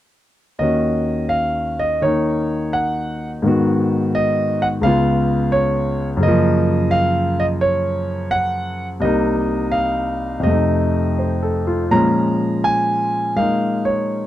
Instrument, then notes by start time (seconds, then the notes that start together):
grand piano
0.59 D#2 D#3 C#4 D#5
0.63 F#4
1.29 F5
1.79 D#5
2.02 D#3 A#3 D#4 C#5
2.73 F#5
3.42 G#2 D#3 B3
3.48 F#4
4.15 D#5
4.62 F#5
4.81 C#2 C#3 B3 F5
4.87 F4
5.52 C#5
6.17 F#2 C#3
6.23 A#3 D#5
6.28 F3
6.91 F5
7.40 D#5
7.61 C#5
8.31 F#5
9.00 C2 C3 A#3 D#5
9.05 D#4
9.72 F5
10.40 F2 C3 D#5
10.46 A3
10.51 D#4
11.19 C5
11.43 A4
11.67 F4
11.91 A#2 F3 G#3 C#4 A#5
12.64 G#5
13.36 G#3 A#3 D#4 F5
13.85 C#5